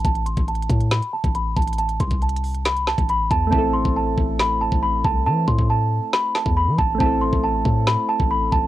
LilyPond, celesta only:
\new Staff \with { instrumentName = "Celesta" } { \time 4/4 \key a \minor \tempo 4 = 138 a''8 c'''8 a''4 b''8 a''8 b''8 a''8 | a''8 c'''8 a''4 b''8 a''8 b''8 a''8 | a''8 c'''8 a''4 b''8 a''8 b''8 a''8 | a''8 c'''8 a''4 b''8 a''8 b''8 a''8 |
a''8 c'''8 a''4 b''8 a''8 b''8 a''8 | }